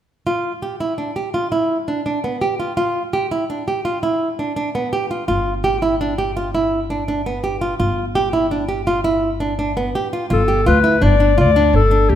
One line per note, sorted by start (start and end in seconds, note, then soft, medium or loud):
0.27 0.51 F4 medium
0.62 0.75 G4 soft
0.80 0.93 E4 soft
0.98 1.11 D4 soft
1.16 1.29 G4 soft
1.34 1.47 F4 soft
1.52 1.77 E4 soft
1.88 2.00 D4 soft
2.06 2.18 D4 soft
2.24 2.36 B3 soft
2.41 2.54 G4 medium
2.60 2.72 F4 soft
2.77 3.02 F4 medium
3.13 3.26 G4 medium
3.31 3.44 E4 medium
3.50 3.62 D4 soft
3.68 3.80 G4 soft
3.85 3.98 F4 medium
4.03 4.28 E4 soft
4.39 4.52 D4 soft
4.56 4.69 D4 medium
4.75 4.87 B3 medium
4.93 5.05 G4 medium
5.11 5.23 F4 soft
5.28 7.76 G1 medium
5.28 5.53 F4 medium
5.64 5.77 G4 medium
5.82 5.95 E4 medium
6.01 6.13 D4 medium
6.18 6.31 G4 medium
6.37 6.49 F4 medium
6.55 6.79 E4 medium
6.90 7.03 D4 medium
7.08 7.21 D4 medium
7.26 7.39 B3 medium
7.44 7.56 G4 medium
7.61 7.74 F4 medium
7.80 9.91 G1 medium
7.80 8.04 F4 medium
8.15 8.28 G4 medium
8.33 8.46 E4 medium
8.51 8.64 D4 medium
8.69 8.81 G4 medium
8.87 8.99 F4 medium
9.04 9.29 E4 medium
9.40 9.53 D4 medium
9.59 9.71 D4 medium
9.77 9.89 B3 medium
9.95 10.07 G4 medium
10.13 10.25 F4 medium
10.30 10.63 G1 medium
10.30 10.43 F4 medium
10.30 10.65 A4 medium
10.48 10.60 G4 medium
10.66 10.99 D2 medium
10.66 10.79 F4 medium
10.66 11.05 B4 medium
10.84 10.96 E4 medium
11.02 11.39 G1 medium
11.02 11.14 D4 medium
11.02 11.38 D5 medium
11.20 11.32 D4 medium
11.38 11.70 D2 medium
11.38 11.50 F4 medium
11.38 11.76 D5 medium
11.56 11.80 D4 medium
11.73 12.06 G1 medium
11.73 12.11 A4 medium
11.91 12.15 D4 medium
12.09 12.15 D2 medium
12.09 12.15 G4 medium